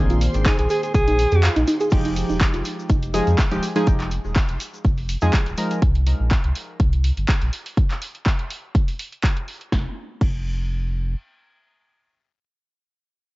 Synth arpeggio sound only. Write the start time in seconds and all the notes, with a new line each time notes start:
0.10 F4
0.46 D#4
0.70 G#4
1.07 D#4
1.32 G#4
1.43 F5
1.56 D#4
1.68 D#4
1.81 G#4
2.05 D#4
2.29 D#4
2.54 F4
2.90 D#4
3.14 G4
3.51 D#4
3.76 D#4